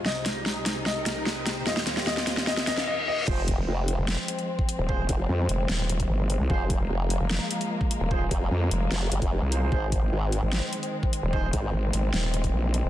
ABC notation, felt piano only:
X:1
M:4/4
L:1/8
Q:1/4=149
K:Fm
V:1 name="Felt piano"
e4 e4 | e2 e2 e e e e | z8 | z8 |
z8 | z8 | z8 | z8 |]